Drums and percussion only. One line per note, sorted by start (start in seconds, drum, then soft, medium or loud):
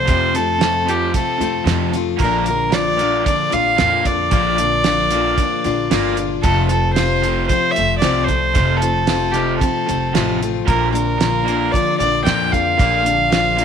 0.08 kick medium
0.08 closed hi-hat medium
0.35 closed hi-hat medium
0.61 snare loud
0.61 closed hi-hat medium
0.89 closed hi-hat medium
1.14 kick medium
1.14 closed hi-hat medium
1.41 closed hi-hat medium
1.67 snare loud
1.67 closed hi-hat medium
1.93 closed hi-hat medium
2.19 kick medium
2.19 closed hi-hat medium
2.46 closed hi-hat medium
2.72 snare loud
2.72 closed hi-hat medium
2.99 closed hi-hat medium
3.26 kick medium
3.26 closed hi-hat medium
3.52 closed hi-hat medium
3.78 snare loud
3.78 closed hi-hat medium
4.05 kick medium
4.05 closed hi-hat medium
4.31 kick medium
4.31 closed hi-hat medium
4.58 closed hi-hat medium
4.84 snare medium
4.84 closed hi-hat medium
5.10 closed hi-hat medium
5.38 kick medium
5.38 closed hi-hat medium
5.64 closed hi-hat soft
5.91 snare medium
5.91 closed hi-hat medium
6.17 closed hi-hat medium
6.43 kick medium
6.43 closed hi-hat medium
6.69 closed hi-hat medium
6.96 snare loud
6.96 closed hi-hat medium
7.24 closed hi-hat medium
7.49 kick medium
7.49 closed hi-hat medium
7.76 closed hi-hat medium
8.02 snare loud
8.02 closed hi-hat medium
8.28 kick medium
8.28 closed hi-hat medium
8.55 kick medium
8.55 closed hi-hat medium
8.82 closed hi-hat medium
9.07 snare medium
9.07 closed hi-hat medium
9.34 closed hi-hat medium
9.61 kick medium
9.61 closed hi-hat medium
9.89 closed hi-hat medium
10.15 snare medium
10.15 closed hi-hat medium
10.42 closed hi-hat medium
10.68 kick medium
10.68 closed hi-hat medium
10.95 closed hi-hat medium
11.21 snare medium
11.21 closed hi-hat medium
11.48 closed hi-hat medium
11.74 kick medium
11.74 closed hi-hat medium
12.00 closed hi-hat medium
12.26 snare loud
12.26 closed hi-hat medium
12.53 kick medium
12.53 closed hi-hat soft
12.79 kick loud
12.79 closed hi-hat medium
13.06 closed hi-hat medium
13.32 snare medium
13.32 closed hi-hat medium
13.59 closed hi-hat medium